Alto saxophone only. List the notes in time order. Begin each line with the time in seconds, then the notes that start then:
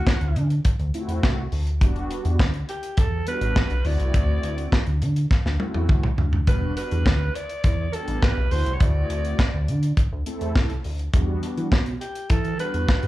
Already playing: F#4
2.69 G4
2.99 A4
3.28 B4
3.86 D5
6.48 B4
6.77 B4
7.35 D5
7.94 A4
8.23 B4
8.52 C5
8.74 C#5
8.81 D5
12.01 G4
12.30 A4
12.60 B4